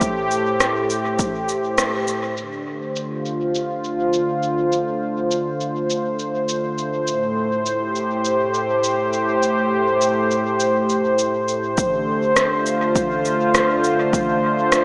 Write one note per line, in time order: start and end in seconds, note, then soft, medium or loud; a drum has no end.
0.00 2.37 A2 medium
0.00 2.37 A3 medium
0.00 3.56 G4 medium
0.00 2.37 C5 medium
0.00 kick loud
0.00 cabasa soft
0.31 cabasa soft
0.60 cross-stick medium
0.60 cabasa medium
0.90 cabasa soft
1.19 kick loud
1.19 cabasa medium
1.49 cabasa soft
1.78 cross-stick medium
1.78 cabasa medium
2.08 cabasa soft
2.37 7.08 D3 medium
2.37 cabasa soft
2.62 14.84 A3 medium
2.74 14.84 C5 medium
2.96 cabasa soft
3.04 7.08 F4 medium
3.25 cabasa soft
3.55 cabasa soft
3.84 cabasa soft
4.13 cabasa soft
4.43 cabasa soft
4.72 cabasa soft
5.31 cabasa soft
5.61 cabasa soft
5.90 cabasa soft
6.19 cabasa soft
6.49 cabasa soft
6.78 cabasa soft
7.07 11.78 A2 medium
7.07 cabasa soft
7.66 cabasa soft
7.77 12.87 G4 medium
7.96 cabasa soft
8.25 cabasa soft
8.54 cabasa soft
8.84 cabasa soft
9.13 cabasa soft
9.43 cabasa soft
10.01 cabasa soft
10.31 cabasa soft
10.60 cabasa soft
10.89 cabasa soft
11.19 cabasa soft
11.48 cabasa soft
11.77 14.84 D3 medium
11.77 kick loud
11.77 cabasa medium
12.36 cross-stick medium
12.36 cabasa medium
12.57 14.84 F4 medium
12.66 cabasa soft
12.96 kick loud
12.96 cabasa medium
13.25 cabasa soft
13.55 cross-stick medium
13.55 cabasa medium
13.84 cabasa soft
14.13 kick loud
14.13 cabasa medium
14.72 cross-stick medium
14.72 cabasa medium